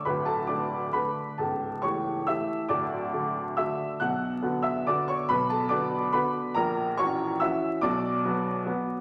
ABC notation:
X:1
M:3/4
L:1/8
Q:1/4=140
K:D
V:1 name="Upright piano"
[Bb] [Aa] [dd']2 [Bb]2 | [Aa]2 [cc']2 [ee']2 | [dd']3 z [ee']2 | [ff']3 [ee'] [dd'] [cc'] |
[Bb] [Aa] [dd']2 [Bb]2 | [^A^a]2 [cc']2 [ee']2 | [dd']3 z3 |]
V:2 name="Upright piano" clef=bass
[D,,,D,,]2 [D,A,A]2 [D,A,A]2 | [C,,,C,,]2 [E,A,G]2 [E,A,G]2 | [D,,,D,,]2 [D,A,F]2 [D,A,F]2 | [B,,,B,,]2 [D,B,F]2 [D,B,F]2 |
[B,,,B,,]2 [D,B,F]2 [D,B,F]2 | [^A,,,^A,,]2 [E,CF]2 [E,CF]2 | [B,,,B,,]2 [F,B,F]2 [F,B,F]2 |]